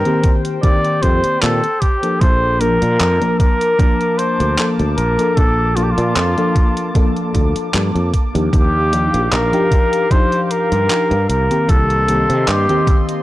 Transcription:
Already playing: flugelhorn A#4, ambient pad C5 G5
0.05 fm electric piano D#3 A#3 C4 G4, closed hi-hat
0.24 kick, closed hi-hat
0.45 closed hi-hat
0.62 fm electric piano D#3 A#3 C4 G4, flugelhorn D5, kick, closed hi-hat
0.84 closed hi-hat
1.02 fretless electric bass F2, flugelhorn C5, kick, closed hi-hat
1.24 muted fretless electric bass stroke, closed hi-hat
1.41 fretless electric bass A#2, fm electric piano D#3 A#3 C4 G4, flugelhorn A4, clap, closed hi-hat
1.64 closed hi-hat
1.81 flugelhorn G4, kick, closed hi-hat
2.02 fm electric piano F3 A#3 D4 A4, closed hi-hat
2.21 fretless electric bass A#1, ambient pad A#3 A5 D6, flugelhorn C5, kick, closed hi-hat
2.60 fm electric piano F3 A#3 D4 A#4, flugelhorn A#4, closed hi-hat
2.82 fretless electric bass A#2, closed hi-hat
3.00 fretless electric bass F2, clap, closed hi-hat
3.20 fm electric piano F3 A#3 D4 A#4, closed hi-hat
3.39 flugelhorn A#4, kick, closed hi-hat
3.61 closed hi-hat
3.78 fm electric piano F3 A#3 D4 A#4, kick, closed hi-hat
4.01 closed hi-hat
4.18 flugelhorn C5, closed hi-hat
4.40 fretless electric bass D2, closed hi-hat
4.58 fm electric piano F3 A#3 D4 A4, clap, closed hi-hat
4.79 fretless electric bass D2, closed hi-hat
4.97 fretless electric bass A#1, flugelhorn A#4, closed hi-hat
5.18 fm electric piano F3 A#3 D4 A4, closed hi-hat
5.36 fretless electric bass A#1, flugelhorn A4, kick, closed hi-hat
5.76 fm electric piano F3 A#3 D4 A4, flugelhorn F4, closed hi-hat
5.83 flugelhorn G4
5.91 flugelhorn F4
5.98 fretless electric bass A#2, closed hi-hat
6.16 fretless electric bass F2, clap, closed hi-hat
6.37 fm electric piano F3 A#3 D4 A4, closed hi-hat
6.56 kick, closed hi-hat
6.77 closed hi-hat
6.94 fm electric piano F3 A#3 D4 A4, kick, closed hi-hat
7.16 closed hi-hat
7.34 fretless electric bass D2, kick, closed hi-hat
7.56 muted fretless electric bass stroke, closed hi-hat
7.74 fretless electric bass G2, fm electric piano F3 A#3 D4 A4, clap, closed hi-hat
7.95 fretless electric bass F2, closed hi-hat
8.13 ambient pad G4 F5, kick, closed hi-hat
8.34 fretless electric bass D#2, fm electric piano F3 D4 D#4 G4, closed hi-hat
8.53 fretless electric bass D#2, flugelhorn G4, kick, closed hi-hat
8.92 fm electric piano F3 D4 D#4 G4, closed hi-hat
9.14 fretless electric bass A#1, closed hi-hat
9.32 fretless electric bass A#1, flugelhorn A#4, clap, closed hi-hat
9.52 fm electric piano F3 D4 D#4 G4, closed hi-hat
9.71 kick, closed hi-hat
9.93 closed hi-hat
10.10 fm electric piano F3 D4 D#4 G4, flugelhorn C5, kick, closed hi-hat
10.32 closed hi-hat
10.44 flugelhorn C5
10.51 flugelhorn A#4, closed hi-hat
10.72 fretless electric bass G2, closed hi-hat
10.89 fm electric piano F3 D4 D#4 G4, clap, closed hi-hat
11.11 fretless electric bass G2, closed hi-hat
11.28 fretless electric bass C2, ambient pad A#3 D#5 C6, flugelhorn A#4, closed hi-hat
11.49 fm electric piano D#3 A#3 C4 G4, closed hi-hat
11.69 fretless electric bass C2, flugelhorn A4, kick, closed hi-hat
11.90 closed hi-hat
12.08 fm electric piano D#3 A#3 C4 G4, closed hi-hat
12.29 fretless electric bass C3, closed hi-hat
12.48 fretless electric bass G2, flugelhorn G4, clap, closed hi-hat
12.69 fm electric piano D#3 A#3 C4 G4, closed hi-hat
12.87 kick, closed hi-hat
13.09 closed hi-hat

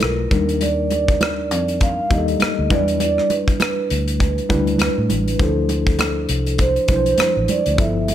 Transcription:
Already playing: tine electric piano A3 E4 F4 B4
0.00 fingered electric bass B1, vibraphone A#4, cross-stick, closed hi-hat, high conga
0.31 fingered electric bass D#2, tine electric piano G3 D4 D#4 A#4, kick, closed hi-hat, high conga
0.49 closed hi-hat
0.61 vibraphone D5, closed hi-hat, muted conga
0.91 closed hi-hat, muted conga
1.08 kick, closed hi-hat
1.21 cross-stick, closed hi-hat, high conga
1.51 fingered electric bass F2, closed hi-hat
1.68 closed hi-hat
1.80 vibraphone F5, kick, closed hi-hat, muted conga
2.10 fingered electric bass D#2, tine electric piano G3 A#3 D#4 G4, vibraphone D#5, kick, closed hi-hat, muted conga
2.18 tine electric piano A4
2.28 closed hi-hat
2.40 muted fingered electric bass stroke, cross-stick, closed hi-hat, high conga
2.59 fingered electric bass D2
2.70 fingered electric bass E2, tine electric piano F#3 D4 E4 B4, vibraphone D5, kick, closed hi-hat, high conga
2.76 tine electric piano G3
2.88 closed hi-hat
3.00 vibraphone D5, closed hi-hat, muted conga
3.18 cross-stick
3.30 vibraphone B4, closed hi-hat, muted conga
3.48 kick, closed hi-hat
3.60 vibraphone B4, cross-stick, closed hi-hat, high conga
3.90 fingered electric bass D2, closed hi-hat
4.08 closed hi-hat
4.20 kick, closed hi-hat, muted conga
4.38 closed hi-hat
4.49 fingered electric bass D2, tine electric piano G3 D4 E4 B4, kick, closed hi-hat, muted conga, low conga
4.67 closed hi-hat
4.78 vibraphone B4, cross-stick, closed hi-hat, high conga
4.98 fingered electric bass A2
5.09 fingered electric bass A1, closed hi-hat, high conga
5.28 closed hi-hat
5.39 fingered electric bass D2, tine electric piano F3 D4 E4 C5, vibraphone A4, kick, closed hi-hat, muted conga
5.69 closed hi-hat, muted conga
5.87 kick, closed hi-hat
5.99 cross-stick, closed hi-hat, high conga
6.29 fingered electric bass C2, closed hi-hat
6.46 closed hi-hat
6.58 vibraphone C5, kick, closed hi-hat, muted conga
6.76 closed hi-hat
6.88 fingered electric bass B1, tine electric piano F3 D4 E4 B4, vibraphone C5, kick, closed hi-hat, muted conga
6.96 tine electric piano C5
7.06 closed hi-hat
7.18 muted fingered electric bass stroke, cross-stick, closed hi-hat, high conga
7.37 fingered electric bass A1
7.48 vibraphone D5, closed hi-hat, high conga
7.66 fingered electric bass D2, closed hi-hat
7.77 fingered electric bass G1, tine electric piano F3 B3 E4 A4, vibraphone E5, kick, closed hi-hat, muted conga
8.08 closed hi-hat, muted conga

